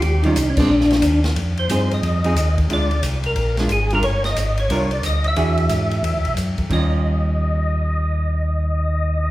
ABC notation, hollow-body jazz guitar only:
X:1
M:4/4
L:1/8
Q:"Swing" 1/4=180
K:Fm
V:1 name="Hollow-body jazz guitar"
z [E,G,DF] z [A,C=D] z4 | z2 [F,CEA]3 [F,CEA] z2 | [A,=DF] z4 [A,DF] z [G,DFB] | z4 [G,=DFB] z3 |
[=E,=D^F^G]4- [E,DFG] z3 | [E,G,DF]8- | [E,G,DF]8 |]